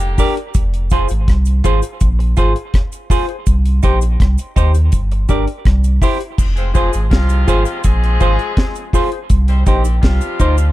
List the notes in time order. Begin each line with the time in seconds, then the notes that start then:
Already playing: F1 D3 G3 A#3 G4
0.00 closed hi-hat, cabasa
0.18 D4 G4 A#4 D5, kick, open hi-hat, cabasa
0.37 closed hi-hat
0.54 F1, kick, closed hi-hat, cabasa
0.74 closed hi-hat
0.90 F4 G#4 C5, kick, closed hi-hat, cabasa
1.09 G#1, closed hi-hat, cabasa
1.28 C2, kick, cross-stick, closed hi-hat
1.45 closed hi-hat, cabasa
1.64 G#1 F4 G#4 C5, kick, closed hi-hat, cabasa
1.82 closed hi-hat, cabasa
2.00 A#1, kick, closed hi-hat, cabasa
2.19 muted clean electric guitar stroke, closed hi-hat
2.37 G#1 F4 G#4 C5, kick, closed hi-hat, cabasa
2.56 closed hi-hat
2.74 kick, cross-stick, closed hi-hat
2.92 closed hi-hat, cabasa
3.10 F4 G#4 C5, kick, open hi-hat, cabasa
3.29 G#4 C5, closed hi-hat
3.46 C2, kick, closed hi-hat, cabasa
3.65 closed hi-hat
3.83 A#1 D#4 G4 C5, kick, closed hi-hat, cabasa
4.01 closed hi-hat, cabasa
4.20 C2, kick, cross-stick, closed hi-hat
4.38 closed hi-hat, cabasa
4.56 D#2 D#4 G4 C5, kick, closed hi-hat, cabasa
4.74 closed hi-hat, cabasa
4.92 G1, kick, closed hi-hat, cabasa
5.12 muted clean electric guitar stroke, closed hi-hat
5.29 G1 D4 G4 A#4 D5, kick, closed hi-hat, cabasa
5.48 closed hi-hat
5.65 C2, kick, cross-stick, closed hi-hat
5.84 closed hi-hat, cabasa
6.02 E4 G4 C5, kick, open hi-hat, cabasa
6.21 closed hi-hat
6.38 F1, kick, crash, cabasa
6.56 G#3 C4 F4 C5, closed hi-hat
6.74 F3 G#3 C4 F4 G#4 C5, kick, closed hi-hat, cabasa
6.93 G#1, closed hi-hat, cabasa
7.10 C2 C3 F3 G#3 F4, kick, snare, closed hi-hat
7.29 closed hi-hat, cabasa
7.47 G#1 F4 G#4 C5, kick, closed hi-hat, cabasa
7.65 closed hi-hat, cabasa
7.84 A#1 F3 G#3 C4 G#4, kick, closed hi-hat, cabasa
8.03 muted clean electric guitar stroke, closed hi-hat
8.20 G#1 F4 G#4 C5, kick, closed hi-hat, cabasa
8.39 closed hi-hat
8.57 kick, snare, closed hi-hat
8.75 closed hi-hat, cabasa
8.93 F4 G#4 C5, kick, open hi-hat, cabasa
9.12 G#4 C5, closed hi-hat
9.30 C2, kick, closed hi-hat, cabasa
9.48 G3 C4 D#4 C5, closed hi-hat
9.65 A#1 D#3 G3 C4 D#4 G4 C5, kick, closed hi-hat, cabasa
9.85 closed hi-hat, cabasa
10.01 C2 C3 F3 G3 F4, kick, snare, closed hi-hat
10.21 closed hi-hat, cabasa
10.39 D2 D#4 G4 C5, kick, closed hi-hat, cabasa
10.58 closed hi-hat, cabasa